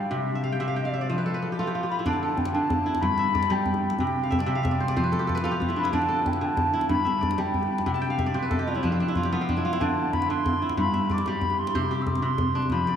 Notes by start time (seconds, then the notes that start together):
Already playing: G2 G3 G4 D5 E5 F5
0.11 C3 E5
0.35 E5
0.44 F5
0.52 G5
0.59 C3 E5
0.68 F5
0.76 G5
0.85 F5
0.94 E5
1.01 D5
1.10 F3 C5
1.18 B4
1.26 A4
1.34 B4
1.42 A4
1.52 G4
1.59 F4 A4
1.67 G4
1.75 F4
1.83 G4
1.90 F4 B5
1.99 E4
2.06 D3 D5 A5, djembe bass
2.13 djembe tone
2.22 A4 A5
2.37 G5, djembe bass
2.45 djembe slap
2.53 D3 A5
2.70 djembe tone, djembe bass
2.86 E4
2.95 djembe slap, djembe tone
3.01 G2 B5, djembe bass
3.18 E5, djembe tone
3.35 D5, djembe slap, djembe bass
3.43 djembe slap
3.50 G3 G5, djembe tone
3.66 djembe bass
3.74 djembe tone
3.90 djembe slap
3.99 C3 G5, djembe bass
4.07 djembe tone
4.24 F5
4.31 E5, djembe tone, djembe bass
4.39 D5, djembe slap
4.46 C3 E5
4.51 E5
4.55 F5
4.63 E5, djembe tone, djembe bass
4.71 D5
4.80 C5
4.88 D5, djembe slap, djembe tone
4.96 F3 C5, djembe bass
5.04 B4
5.12 A4, djembe tone
5.19 G4
5.27 A4, djembe slap, djembe bass
5.35 B4, djembe slap
5.44 F4 A4, djembe tone
5.51 G4
5.60 F4, djembe bass
5.69 E4, djembe tone
5.76 D4 B5
5.84 E4, djembe slap
5.92 D3 D5 A5, djembe bass
6.02 djembe tone
6.09 A4
6.26 G5, djembe tone, djembe bass
6.33 djembe slap
6.41 D3 A5
6.57 djembe tone, djembe bass
6.74 E4
6.81 djembe slap, djembe tone
6.89 G2 B5, djembe bass
7.05 E5, djembe tone
7.21 D5, djembe slap, djembe bass
7.31 djembe slap
7.38 G3 G5, djembe tone
7.54 djembe bass
7.63 djembe tone
7.78 djembe slap
7.86 C3 G5, djembe slap, djembe bass
7.94 A5, djembe tone
8.02 G5
8.10 F5, djembe slap
8.18 E5, djembe tone, djembe bass
8.26 D5
8.34 C3 C5 E5
8.42 B4, djembe slap
8.51 A4, djembe tone, djembe bass
8.59 G4
8.67 F4
8.75 E4, djembe tone
8.83 F3 D4, djembe bass
8.92 C4
9.00 D4
9.08 E4
9.15 F4, djembe bass
9.23 G4, djembe slap
9.32 B3 F4, djembe tone
9.40 C4, djembe slap
9.49 D4, djembe bass
9.57 E4, djembe tone
9.65 F4 F5
9.73 E4, djembe slap
9.80 D3 D5 A5, djembe bass
9.89 djembe tone
10.13 B5, djembe tone, djembe bass
10.22 djembe slap
10.29 D3 C6
10.46 djembe tone, djembe bass
10.62 E4
10.69 djembe slap, djembe tone
10.77 G2 B5, djembe bass
10.93 E5, djembe tone
11.10 D5 D6, djembe slap, djembe bass
11.18 djembe slap
11.26 G3 B5, djembe tone
11.41 djembe bass
11.50 djembe tone
11.58 C6
11.67 djembe slap
11.75 C3 C5, djembe bass
11.82 djembe tone
11.91 G4
12.02 E6
12.07 D6, djembe tone, djembe bass
12.15 djembe slap
12.22 C3 C6
12.38 djembe tone, djembe bass
12.55 D4
12.62 djembe tone
12.70 F3 B5, djembe bass
12.87 D5, djembe tone